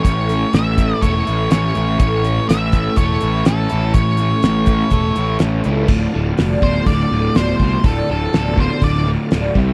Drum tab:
CC |----------------|----------------|----------------|x---------------|
HH |x-x-x-x-x-x-x-x-|x-x-x-x-x-x-x-x-|x-x-x-x-x-x-x-x-|----o---o---o---|
SD |----o-------o---|----o-------o---|----o-------o---|----o----o--o---|
BD |o-----o-o-------|o-----o-o-------|o-----o-o-------|o-----o-o-----o-|

CC |----------------|
HH |o---o---o---o---|
SD |----o----o--o---|
BD |o-----o-o-----o-|